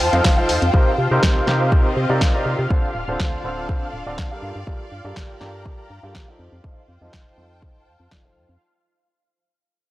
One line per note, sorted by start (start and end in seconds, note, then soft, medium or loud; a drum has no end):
0.00 1.46 F4 medium
0.00 8.62 F4 medium
0.00 1.52 C5 medium
0.00 8.62 F5 medium
0.00 1.53 G5 medium
0.00 1.53 A5 medium
0.00 open hi-hat loud
0.13 0.21 F2 medium
0.13 0.35 F3 medium
0.13 0.35 D#4 medium
0.13 0.35 F4 medium
0.13 0.35 A4 medium
0.13 0.35 C5 medium
0.13 0.35 F5 medium
0.13 closed hi-hat soft
0.13 ride soft
0.24 0.51 F1 medium
0.24 kick loud
0.24 snare loud
0.24 closed hi-hat medium
0.24 ride loud
0.38 0.61 F3 medium
0.38 0.61 D#4 medium
0.38 0.61 F4 medium
0.38 0.61 A4 medium
0.38 0.61 C5 medium
0.38 0.61 F5 medium
0.49 0.59 F2 medium
0.49 open hi-hat loud
0.49 ride medium
0.62 0.71 F2 loud
0.62 closed hi-hat soft
0.73 0.83 C2 loud
0.73 0.89 C3 medium
0.73 3.39 C4 medium
0.73 0.89 C4 medium
0.73 0.89 D#4 medium
0.73 0.89 G4 medium
0.73 0.89 A#4 medium
0.73 0.89 C5 medium
0.73 kick loud
0.98 1.08 C3 medium
0.98 3.40 G4 medium
1.11 1.20 C3 loud
1.11 1.45 C3 medium
1.11 1.45 C4 medium
1.11 1.45 D#4 medium
1.11 1.45 G4 medium
1.11 1.45 A#4 medium
1.11 1.45 C5 loud
1.23 1.41 C2 medium
1.23 kick loud
1.23 snare loud
1.47 1.74 C3 loud
1.47 1.69 C3 medium
1.47 1.69 C4 medium
1.47 1.69 D#4 medium
1.47 1.69 G4 medium
1.47 1.69 A#4 medium
1.47 1.69 C5 medium
1.47 snare medium
1.63 2.70 D#5 medium
1.72 1.82 C2 medium
1.72 1.87 C3 medium
1.72 1.87 C4 medium
1.72 1.87 D#4 medium
1.72 1.87 G4 medium
1.72 1.87 A#4 medium
1.72 1.87 C5 loud
1.72 kick loud
1.97 2.06 C3 loud
2.10 2.23 C3 medium
2.10 2.31 C3 medium
2.10 2.31 C4 medium
2.10 2.31 D#4 medium
2.10 2.31 G4 medium
2.10 2.31 A#4 medium
2.10 2.31 D5 medium
2.21 2.31 C2 medium
2.21 kick loud
2.21 snare loud
2.34 2.58 C3 medium
2.34 2.58 C4 medium
2.34 2.58 D#4 medium
2.34 2.58 G4 medium
2.34 2.57 A#4 medium
2.34 2.58 D5 medium
2.46 2.56 C3 medium
2.59 2.67 C3 medium
2.70 2.80 D2 loud
2.70 2.86 D3 medium
2.70 2.86 C4 medium
2.70 5.22 D4 medium
2.70 2.86 D4 medium
2.70 2.86 F4 medium
2.70 2.86 A4 medium
2.70 2.86 C5 medium
2.70 kick loud
2.95 3.05 D1 medium
3.08 3.17 D1 loud
3.08 3.41 D3 medium
3.08 3.41 C4 medium
3.08 3.41 D4 medium
3.08 3.41 F4 medium
3.08 3.41 A4 medium
3.08 4.42 A4 medium
3.08 3.41 C5 medium
3.17 3.38 D2 medium
3.17 7.28 D5 medium
3.17 kick loud
3.17 snare loud
3.44 3.70 D1 loud
3.44 3.66 D3 medium
3.44 3.66 C4 medium
3.44 3.66 D4 medium
3.44 3.66 F4 medium
3.44 3.66 A4 medium
3.44 3.66 C5 medium
3.44 5.22 F5 medium
3.69 3.78 D2 medium
3.69 3.84 C4 medium
3.69 3.84 D4 medium
3.69 3.84 F4 medium
3.69 3.84 A4 medium
3.69 3.84 C5 loud
3.69 kick loud
3.93 4.03 D1 loud
4.06 4.20 D1 medium
4.06 4.28 D3 medium
4.06 4.28 C4 medium
4.06 4.28 D4 medium
4.06 4.28 F4 medium
4.06 4.28 A4 medium
4.06 4.28 D5 medium
4.18 4.28 D2 loud
4.18 kick medium
4.18 snare loud
4.31 4.54 G3 medium
4.31 4.54 F4 medium
4.31 4.54 G4 medium
4.31 4.54 A4 medium
4.31 4.54 A#4 medium
4.31 4.54 F5 medium
4.42 4.52 G2 medium
4.42 7.28 G4 medium
4.56 4.64 G2 medium
4.67 4.77 G1 loud
4.67 4.82 G3 medium
4.67 4.82 F4 medium
4.67 4.82 G4 medium
4.67 4.82 A4 medium
4.67 4.82 A#4 medium
4.67 4.82 D5 medium
4.67 kick loud
4.92 5.01 G2 medium
5.05 5.13 G2 loud
5.05 5.38 G3 medium
5.05 5.38 F4 medium
5.05 5.38 G4 medium
5.05 5.38 A4 medium
5.05 5.38 A#4 medium
5.05 5.38 D5 medium
5.16 5.35 G1 medium
5.16 kick loud
5.16 snare loud
5.26 6.39 A#5 medium
5.41 5.67 G2 loud
5.41 5.63 G3 medium
5.41 5.63 F4 medium
5.41 5.63 G4 medium
5.41 5.63 A4 medium
5.41 5.63 A#4 medium
5.41 5.63 D5 medium
5.41 snare medium
5.66 5.75 G1 medium
5.66 5.81 G3 medium
5.66 5.81 F4 medium
5.66 5.81 G4 medium
5.66 5.81 A4 medium
5.66 5.81 A#4 medium
5.66 5.81 D5 medium
5.66 kick loud
5.90 6.00 G2 medium
6.03 6.16 G2 medium
6.03 6.25 G3 medium
6.03 6.25 F4 medium
6.03 6.25 G4 medium
6.03 6.25 A4 medium
6.03 6.25 A#4 medium
6.03 6.25 F5 medium
6.15 6.24 G1 medium
6.15 kick medium
6.15 snare loud
6.28 6.51 F3 medium
6.28 6.51 D#4 medium
6.28 6.51 F4 medium
6.28 6.51 A4 medium
6.28 6.51 C5 medium
6.28 6.51 F5 medium
6.39 6.49 F2 medium
6.39 8.61 F4 medium
6.52 6.61 F2 medium
6.52 8.61 C5 medium
6.64 6.74 F1 loud
6.64 6.79 F3 medium
6.64 6.79 D#4 medium
6.64 6.79 F4 medium
6.64 6.79 A4 medium
6.64 6.79 C5 medium
6.64 6.79 D#5 medium
6.64 kick loud
6.87 6.98 F2 medium
6.87 8.61 G5 medium
7.01 7.10 F2 loud
7.01 7.35 F3 medium
7.01 7.35 D#4 medium
7.01 7.35 F4 medium
7.01 7.35 A4 medium
7.01 7.35 C5 medium
7.01 7.35 D#5 medium
7.11 8.61 A5 medium
7.11 kick loud
7.11 snare loud
7.38 7.64 F2 loud
7.38 7.60 F3 medium
7.38 7.60 D#4 medium
7.38 7.60 F4 medium
7.38 7.60 A4 medium
7.38 7.59 C5 medium
7.38 7.59 D#5 medium
7.62 7.88 F1 medium
7.62 7.77 F3 medium
7.62 7.77 D#4 medium
7.62 7.78 F4 medium
7.62 7.77 A4 medium
7.62 7.78 C5 medium
7.62 7.77 D#5 loud
7.62 kick loud
7.87 7.97 F2 medium
8.00 8.08 F2 medium
8.11 8.37 F1 medium
8.11 8.23 F3 medium
8.11 8.23 D#4 medium
8.11 8.23 F4 medium
8.11 8.23 A4 medium
8.11 8.23 C5 medium
8.11 8.23 D5 loud
8.11 kick medium
8.11 snare loud
8.25 8.48 F3 medium
8.25 8.48 D#4 medium
8.25 8.48 F4 medium
8.25 8.48 A4 medium
8.25 8.48 C5 medium
8.25 8.48 F5 medium
8.36 8.46 F2 loud
8.49 8.58 F2 medium